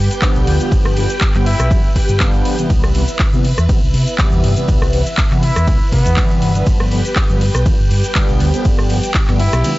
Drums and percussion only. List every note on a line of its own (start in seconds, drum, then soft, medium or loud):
0.11 closed hi-hat medium
0.11 shaker medium
0.22 kick loud
0.22 clap loud
0.22 closed hi-hat medium
0.22 ride medium
0.22 shaker medium
0.35 shaker soft
0.47 open hi-hat loud
0.60 closed hi-hat medium
0.60 shaker medium
0.72 kick loud
0.72 closed hi-hat medium
0.72 ride medium
0.72 shaker medium
0.85 cross-stick medium
0.85 shaker soft
0.97 open hi-hat loud
1.10 closed hi-hat medium
1.10 shaker medium
1.21 kick loud
1.21 clap loud
1.21 closed hi-hat medium
1.21 ride medium
1.21 shaker medium
1.34 clap soft
1.34 shaker soft
1.46 open hi-hat loud
1.59 cross-stick medium
1.59 closed hi-hat medium
1.59 shaker medium
1.71 kick loud
1.71 closed hi-hat soft
1.71 ride medium
1.71 shaker medium
1.84 shaker soft
1.96 kick medium
1.96 open hi-hat loud
2.09 closed hi-hat medium
2.09 shaker medium
2.20 kick loud
2.20 clap loud
2.20 closed hi-hat medium
2.20 ride medium
2.20 shaker medium
2.34 shaker soft
2.45 open hi-hat loud
2.59 closed hi-hat medium
2.59 shaker medium
2.70 kick loud
2.70 closed hi-hat medium
2.70 ride medium
2.70 shaker medium
2.83 cross-stick medium
2.83 shaker soft
2.95 open hi-hat loud
3.08 closed hi-hat medium
3.08 shaker medium
3.19 kick loud
3.19 clap loud
3.19 closed hi-hat medium
3.19 ride medium
3.19 shaker medium
3.33 shaker soft
3.44 open hi-hat loud
3.58 cross-stick medium
3.58 closed hi-hat medium
3.58 shaker medium
3.69 kick loud
3.69 closed hi-hat soft
3.69 ride medium
3.69 shaker medium
3.84 shaker soft
3.94 open hi-hat loud
4.08 closed hi-hat medium
4.08 shaker medium
4.18 kick loud
4.18 clap loud
4.18 closed hi-hat medium
4.18 ride medium
4.18 shaker medium
4.32 shaker soft
4.44 open hi-hat loud
4.56 closed hi-hat medium
4.56 shaker medium
4.68 kick loud
4.68 closed hi-hat medium
4.68 ride medium
4.68 shaker medium
4.82 cross-stick medium
4.82 shaker soft
4.93 open hi-hat loud
5.06 closed hi-hat medium
5.06 shaker medium
5.17 kick loud
5.17 clap loud
5.17 closed hi-hat medium
5.17 ride medium
5.17 shaker medium
5.31 clap soft
5.31 shaker soft
5.43 open hi-hat loud
5.56 cross-stick medium
5.56 closed hi-hat medium
5.56 shaker medium
5.67 kick loud
5.67 closed hi-hat medium
5.67 ride medium
5.67 shaker medium
5.81 shaker soft
5.92 kick medium
5.92 open hi-hat loud
6.06 closed hi-hat medium
6.06 shaker medium
6.17 kick loud
6.17 clap loud
6.17 closed hi-hat medium
6.17 ride medium
6.17 shaker medium
6.31 shaker soft
6.42 open hi-hat loud
6.55 closed hi-hat medium
6.55 shaker medium
6.67 kick loud
6.67 closed hi-hat medium
6.67 ride medium
6.67 shaker medium
6.80 cross-stick medium
6.80 shaker soft
6.92 open hi-hat loud
7.05 closed hi-hat medium
7.05 shaker medium
7.16 kick loud
7.16 clap loud
7.16 closed hi-hat medium
7.16 ride medium
7.16 shaker medium
7.30 shaker soft
7.41 open hi-hat loud
7.55 cross-stick medium
7.55 closed hi-hat medium
7.55 shaker medium
7.66 kick loud
7.66 closed hi-hat medium
7.66 ride medium
7.66 shaker medium
7.80 shaker soft
7.91 open hi-hat loud
8.04 closed hi-hat medium
8.04 shaker medium
8.15 kick loud
8.15 clap loud
8.15 closed hi-hat medium
8.15 ride medium
8.15 shaker medium
8.29 shaker soft
8.40 open hi-hat loud
8.54 closed hi-hat medium
8.54 shaker medium
8.65 kick loud
8.65 closed hi-hat medium
8.65 ride medium
8.65 shaker medium
8.79 cross-stick medium
8.79 shaker soft
8.90 open hi-hat loud
9.03 closed hi-hat medium
9.03 shaker medium
9.14 kick loud
9.14 clap loud
9.14 closed hi-hat medium
9.14 ride medium
9.14 shaker medium
9.28 clap soft
9.28 shaker soft
9.39 open hi-hat loud
9.52 cross-stick medium
9.52 closed hi-hat medium
9.52 shaker medium
9.64 closed hi-hat medium
9.64 ride medium
9.64 shaker medium